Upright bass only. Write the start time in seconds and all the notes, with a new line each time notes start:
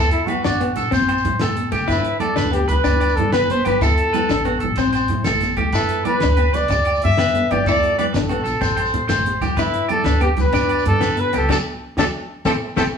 Already playing: D2
0.45 A1
0.77 A#1
0.92 A1
1.25 A2
1.41 A1
1.73 F#1
1.89 G1
2.36 D2
2.68 D2
2.85 D2
3.17 G2
3.33 G1
3.66 G1
3.81 D2
4.30 A1
4.62 A1
4.77 A1
5.09 A2
5.25 A1
5.57 D2
5.73 G1
6.23 D2
6.56 D2
6.70 D2
7.04 G2
7.20 G1
7.51 G1
7.67 D2
8.14 A1
8.45 A#1
8.61 A1
8.93 A2
9.09 A1
9.41 D2
9.57 G1
10.05 D2
10.37 D2
10.53 D2
10.86 G2
11.03 G1
11.35 C#2
11.50 D2
11.97 D2
12.45 A1
12.77 A1